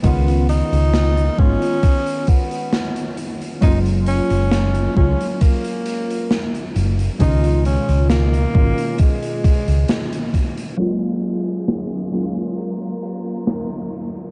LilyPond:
<<
  \new Staff \with { instrumentName = "String section" } { \time 4/4 \key fis \major \tempo 4 = 67 << { r1 | r1 | r1 | gis'2 ais'2 | } \\ { r1 | r1 | r1 | <fis ais eis'>1 | } >> }
  \new Staff \with { instrumentName = "Tenor saxophone" } { \time 4/4 \key fis \major b8 dis'4 cis'4 b4 r8 | dis'8 cis'4 cis'8 ais4. r8 | dis'8 cis'8 ais4 gis4. r8 | r1 | }
  \new Staff \with { instrumentName = "Synth keys" } { \time 4/4 \key fis \major <dis gis b cis' eis'>4. <dis gis b cis' eis'>2~ <dis gis b cis' eis'>8 | <fis gis ais cis' eis'>4. <fis gis ais cis' eis'>2~ <fis gis ais cis' eis'>8 | <b, dis gis cis' eis'>4. <b, dis gis cis' eis'>2~ <b, dis gis cis' eis'>8 | <fis gis ais cis' eis'>4. <fis gis ais cis' eis'>2~ <fis gis ais cis' eis'>8 | }
  \new Staff \with { instrumentName = "Fingered electric bass" } { \clef bass \time 4/4 \key fis \major cis,8 r16 cis,8 r16 gis,,16 r2 r16 | fis,,8 r16 fis,,8 r16 cis,16 r4. r16 fis,,16 r16 | cis,8 r16 cis,8 r16 gis,,16 r4 cis,16 r4 | r1 | }
  \new DrumStaff \with { instrumentName = "Drums" } \drummode { \time 4/4 <hh bd>16 hh16 hh16 hh16 <hh sn>16 hh16 bd16 hh16 <hh bd>16 hh16 <hh bd>16 hh16 <hh sn>16 hh16 hh16 hh16 | <hh bd>16 hh16 hh16 hh16 <hh sn>16 hh16 bd16 hh16 <hh bd>16 hh16 hh16 hh16 <hh sn>16 hh16 hh16 hh16 | <hh bd>16 hh16 hh16 hh16 <hh sn>16 hh16 bd16 hh16 <hh bd>16 hh16 <hh bd>16 hh16 <hh sn>16 hh16 <hh bd>16 hh16 | <cymc hh>16 hh16 hh16 hh16 <hh sn>16 hh8 hh16 hh16 hh16 hh16 hh16 <hh sn>16 hh16 hh16 hh16 | }
>>